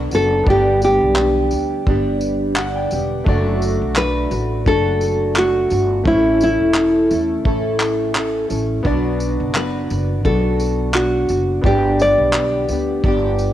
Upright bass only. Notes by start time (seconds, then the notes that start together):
0.13 F#1
0.47 G1
1.01 B1
1.52 D2
1.87 G1
2.92 E1
3.27 F#1
3.81 B1
4.31 A1
4.67 F#1
5.71 G1
6.05 A1
6.60 E1
7.11 E2
7.46 A1
8.51 A1
8.85 B1
9.40 F#1
9.91 F#1
10.25 B1
11.30 F#1
11.64 G1
12.18 B1
12.69 D2
13.04 G1